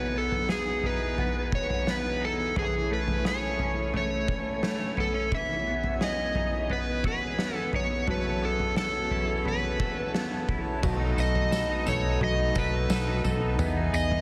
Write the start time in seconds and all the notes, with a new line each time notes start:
Already playing: E2 B2 B3 D#4 E4 B4 G#5
0.15 B3 A4
0.32 floor tom
0.49 G#4, snare
0.83 D#4 B4, floor tom
1.18 B3, floor tom
1.52 C#5, kick
1.70 floor tom
1.87 B3 B4, snare
2.21 D#4 A4
2.56 E3 A3 C#4 G#4, floor tom
2.91 A3 B4
3.08 floor tom
3.25 G#4 C#5, snare
3.59 C#4, floor tom
3.93 A3 C#5, floor tom
4.28 kick
4.63 A3, snare
4.97 B3 A4, floor tom
5.14 C#4
5.32 E2 B2 E3 C#4 E5, kick, floor tom
5.67 B3
5.84 floor tom
6.01 G#4 D#5, snare
6.35 D#4, floor tom
6.70 B3 B4, floor tom
7.04 F#4 B4, kick
7.22 G#4
7.39 B3, snare
7.55 A4
7.73 D#4 C#5, floor tom
8.07 F#3 C#4 A4 B4, floor tom
8.42 B3 A4
8.59 floor tom
8.76 A4, snare
9.11 E4, floor tom
9.45 B3 B4, floor tom
9.80 A4, kick
10.14 B3, snare
10.49 E4, kick, floor tom
10.83 B1 F#3 A3 B3 D#4, kick, floor tom, crash, tambourine
11.00 D#4
11.17 B1 A4 D#5, tambourine
11.34 D#4, floor tom
11.51 A4, snare, tambourine
11.69 D#4
11.86 B1 A4 C#5, floor tom, tambourine
12.03 D#4
12.20 B1 F#3 D#5, floor tom
12.38 D#4
12.55 B1 A4 B4, kick, tambourine
12.72 D#4
12.90 B1 A4, snare, tambourine
13.07 D#4
13.24 B1 A4, floor tom, tambourine
13.42 D#4
13.58 E2 E3 B3 G#4, floor tom, tambourine
13.76 D#4
13.93 E2 G#4 D#5, tambourine
14.11 D#4, floor tom